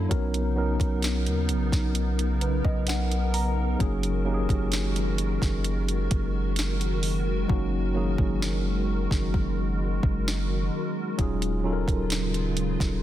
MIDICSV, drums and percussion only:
0, 0, Header, 1, 2, 480
1, 0, Start_track
1, 0, Key_signature, 6, "major"
1, 0, Tempo, 923077
1, 58, Time_signature, 4, 2, 24, 8
1, 6774, End_track
2, 0, Start_track
2, 0, Title_t, "Drums"
2, 57, Note_on_c, 9, 36, 118
2, 57, Note_on_c, 9, 42, 70
2, 109, Note_off_c, 9, 36, 0
2, 109, Note_off_c, 9, 42, 0
2, 178, Note_on_c, 9, 42, 59
2, 230, Note_off_c, 9, 42, 0
2, 415, Note_on_c, 9, 36, 102
2, 420, Note_on_c, 9, 42, 53
2, 467, Note_off_c, 9, 36, 0
2, 472, Note_off_c, 9, 42, 0
2, 533, Note_on_c, 9, 42, 69
2, 542, Note_on_c, 9, 38, 121
2, 585, Note_off_c, 9, 42, 0
2, 594, Note_off_c, 9, 38, 0
2, 658, Note_on_c, 9, 42, 43
2, 710, Note_off_c, 9, 42, 0
2, 774, Note_on_c, 9, 42, 69
2, 826, Note_off_c, 9, 42, 0
2, 896, Note_on_c, 9, 36, 92
2, 900, Note_on_c, 9, 42, 53
2, 903, Note_on_c, 9, 38, 65
2, 948, Note_off_c, 9, 36, 0
2, 952, Note_off_c, 9, 42, 0
2, 955, Note_off_c, 9, 38, 0
2, 1014, Note_on_c, 9, 42, 74
2, 1066, Note_off_c, 9, 42, 0
2, 1139, Note_on_c, 9, 42, 51
2, 1191, Note_off_c, 9, 42, 0
2, 1255, Note_on_c, 9, 42, 59
2, 1307, Note_off_c, 9, 42, 0
2, 1376, Note_on_c, 9, 36, 98
2, 1428, Note_off_c, 9, 36, 0
2, 1491, Note_on_c, 9, 42, 65
2, 1505, Note_on_c, 9, 38, 116
2, 1543, Note_off_c, 9, 42, 0
2, 1557, Note_off_c, 9, 38, 0
2, 1620, Note_on_c, 9, 42, 49
2, 1672, Note_off_c, 9, 42, 0
2, 1736, Note_on_c, 9, 46, 71
2, 1788, Note_off_c, 9, 46, 0
2, 1977, Note_on_c, 9, 36, 118
2, 1977, Note_on_c, 9, 42, 75
2, 2029, Note_off_c, 9, 36, 0
2, 2029, Note_off_c, 9, 42, 0
2, 2097, Note_on_c, 9, 42, 57
2, 2149, Note_off_c, 9, 42, 0
2, 2335, Note_on_c, 9, 36, 101
2, 2340, Note_on_c, 9, 42, 53
2, 2387, Note_off_c, 9, 36, 0
2, 2392, Note_off_c, 9, 42, 0
2, 2453, Note_on_c, 9, 42, 69
2, 2462, Note_on_c, 9, 38, 120
2, 2505, Note_off_c, 9, 42, 0
2, 2514, Note_off_c, 9, 38, 0
2, 2580, Note_on_c, 9, 42, 48
2, 2632, Note_off_c, 9, 42, 0
2, 2695, Note_on_c, 9, 42, 66
2, 2747, Note_off_c, 9, 42, 0
2, 2817, Note_on_c, 9, 36, 93
2, 2821, Note_on_c, 9, 42, 49
2, 2824, Note_on_c, 9, 38, 66
2, 2869, Note_off_c, 9, 36, 0
2, 2873, Note_off_c, 9, 42, 0
2, 2876, Note_off_c, 9, 38, 0
2, 2935, Note_on_c, 9, 42, 71
2, 2987, Note_off_c, 9, 42, 0
2, 3060, Note_on_c, 9, 42, 55
2, 3112, Note_off_c, 9, 42, 0
2, 3177, Note_on_c, 9, 42, 59
2, 3178, Note_on_c, 9, 36, 98
2, 3229, Note_off_c, 9, 42, 0
2, 3230, Note_off_c, 9, 36, 0
2, 3412, Note_on_c, 9, 42, 63
2, 3426, Note_on_c, 9, 38, 122
2, 3464, Note_off_c, 9, 42, 0
2, 3478, Note_off_c, 9, 38, 0
2, 3541, Note_on_c, 9, 42, 49
2, 3593, Note_off_c, 9, 42, 0
2, 3655, Note_on_c, 9, 46, 66
2, 3707, Note_off_c, 9, 46, 0
2, 3897, Note_on_c, 9, 36, 120
2, 3949, Note_off_c, 9, 36, 0
2, 4256, Note_on_c, 9, 36, 103
2, 4308, Note_off_c, 9, 36, 0
2, 4381, Note_on_c, 9, 38, 113
2, 4433, Note_off_c, 9, 38, 0
2, 4737, Note_on_c, 9, 36, 93
2, 4744, Note_on_c, 9, 38, 66
2, 4789, Note_off_c, 9, 36, 0
2, 4796, Note_off_c, 9, 38, 0
2, 4857, Note_on_c, 9, 36, 85
2, 4909, Note_off_c, 9, 36, 0
2, 5216, Note_on_c, 9, 36, 93
2, 5268, Note_off_c, 9, 36, 0
2, 5345, Note_on_c, 9, 38, 116
2, 5397, Note_off_c, 9, 38, 0
2, 5817, Note_on_c, 9, 36, 117
2, 5817, Note_on_c, 9, 42, 73
2, 5869, Note_off_c, 9, 36, 0
2, 5869, Note_off_c, 9, 42, 0
2, 5939, Note_on_c, 9, 42, 56
2, 5991, Note_off_c, 9, 42, 0
2, 6176, Note_on_c, 9, 36, 105
2, 6180, Note_on_c, 9, 42, 55
2, 6228, Note_off_c, 9, 36, 0
2, 6232, Note_off_c, 9, 42, 0
2, 6293, Note_on_c, 9, 42, 69
2, 6302, Note_on_c, 9, 38, 120
2, 6345, Note_off_c, 9, 42, 0
2, 6354, Note_off_c, 9, 38, 0
2, 6419, Note_on_c, 9, 42, 44
2, 6471, Note_off_c, 9, 42, 0
2, 6535, Note_on_c, 9, 42, 65
2, 6587, Note_off_c, 9, 42, 0
2, 6657, Note_on_c, 9, 36, 95
2, 6661, Note_on_c, 9, 42, 49
2, 6664, Note_on_c, 9, 38, 64
2, 6709, Note_off_c, 9, 36, 0
2, 6713, Note_off_c, 9, 42, 0
2, 6716, Note_off_c, 9, 38, 0
2, 6774, End_track
0, 0, End_of_file